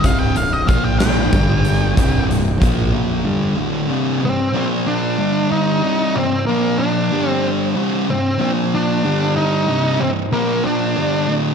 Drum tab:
HH |xxxxxx|xxx---|------|------|
SD |---o--|------|------|------|
BD |o-o-o-|o-o---|------|------|

HH |------|------|
SD |------|------|
BD |------|------|